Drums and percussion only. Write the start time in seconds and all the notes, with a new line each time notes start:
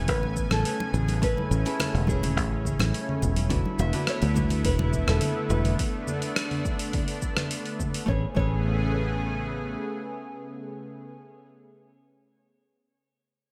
0.08 kick, open hi-hat, low conga, cabasa
0.23 muted conga
0.37 kick, cabasa
0.51 cross-stick, open hi-hat, high conga, low conga, cabasa
0.65 open hi-hat, cabasa
0.80 muted conga
0.94 low conga, cabasa
1.08 open hi-hat, high conga, cabasa
1.22 kick, open hi-hat, muted conga, cabasa
1.37 high conga, low conga
1.52 cabasa
1.66 open hi-hat, cabasa
1.80 cross-stick, open hi-hat, muted conga, low conga, cabasa
1.95 open hi-hat
2.07 kick, high conga, cabasa
2.23 open hi-hat, muted conga, low conga, cabasa
2.37 kick, open hi-hat, cabasa
2.65 kick, low conga, cabasa
2.79 cross-stick, open hi-hat, muted conga, high conga, cabasa
2.94 open hi-hat, cabasa
3.09 low conga
3.22 kick, muted conga, cabasa
3.36 open hi-hat, high conga, cabasa
3.50 kick, open hi-hat, low conga, cabasa
3.65 high conga
3.79 muted conga, cabasa
3.93 open hi-hat, low conga, cabasa
4.07 cross-stick, open hi-hat, cabasa
4.22 open hi-hat, muted conga
4.36 kick, high conga, low conga, cabasa
4.50 open hi-hat, low conga, cabasa
4.65 kick, open hi-hat, cabasa
4.79 muted conga, low conga
4.93 kick, cabasa
5.08 cross-stick, open hi-hat, high conga, cabasa
5.21 open hi-hat, muted conga, low conga, cabasa
5.50 cabasa
5.65 open hi-hat, high conga, low conga, cabasa
5.79 kick, open hi-hat, cabasa
6.07 low conga, cabasa
6.22 open hi-hat, cabasa
6.36 cross-stick, open hi-hat, cabasa
6.51 open hi-hat, low conga
6.65 kick, cabasa
6.79 open hi-hat, cabasa
6.93 kick, open hi-hat, low conga, cabasa
7.08 open hi-hat
7.22 kick, cabasa
7.37 cross-stick, open hi-hat, low conga, cabasa
7.51 open hi-hat, cabasa
7.66 open hi-hat
7.80 kick, low conga, cabasa
7.94 open hi-hat, cabasa
8.08 kick
8.37 kick